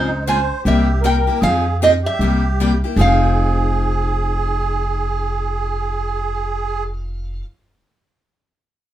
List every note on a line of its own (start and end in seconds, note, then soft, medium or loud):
0.00 0.50 C#2 medium
0.00 0.24 D#4 medium
0.00 0.29 C5 medium
0.25 0.38 C#3 medium
0.25 0.38 G#3 medium
0.25 0.38 C4 medium
0.25 0.38 F4 medium
0.25 0.39 G#4 medium
0.25 0.62 C5 medium
0.25 0.68 G#5 medium
0.64 1.27 C2 medium
0.64 0.87 C3 medium
0.64 0.87 G3 medium
0.64 0.87 A#3 medium
0.64 0.87 E4 medium
0.64 1.01 G4 medium
0.64 0.87 G4 medium
0.68 1.07 E5 medium
1.01 1.15 C3 medium
1.01 1.15 G3 medium
1.01 1.15 A#3 medium
1.01 1.15 E4 medium
1.01 1.16 G4 medium
1.01 1.39 A#4 medium
1.05 1.43 G5 medium
1.27 1.43 A#3 soft
1.27 1.43 E4 soft
1.27 1.42 G4 medium
1.40 2.04 F2 medium
1.40 1.64 F3 medium
1.40 1.64 C4 medium
1.40 1.64 D#4 medium
1.40 1.77 G#4 medium
1.40 1.79 F5 loud
1.44 1.64 G#4 medium
1.79 1.93 F3 medium
1.79 1.93 C4 medium
1.79 1.93 D#4 loud
1.79 1.91 G4 medium
1.79 1.93 G#4 medium
1.84 1.90 D#5 medium
2.03 2.78 G4 medium
2.03 2.79 E5 medium
2.19 2.82 C2 medium
2.19 2.42 C3 medium
2.19 2.42 G3 medium
2.19 2.42 A#3 medium
2.19 2.42 E4 medium
2.19 2.42 G4 medium
2.60 2.71 C3 medium
2.60 2.71 G3 medium
2.60 2.71 A#3 medium
2.60 2.71 E4 medium
2.60 2.71 G4 medium
2.84 2.98 A#3 soft
2.84 2.98 E4 soft
2.84 2.98 G4 medium
2.96 7.40 F1 medium
2.96 7.45 F3 medium
2.96 7.47 C4 medium
2.96 7.47 D#4 medium
2.96 6.84 G#4 medium
2.96 7.48 G#4 medium
3.01 7.45 F5 medium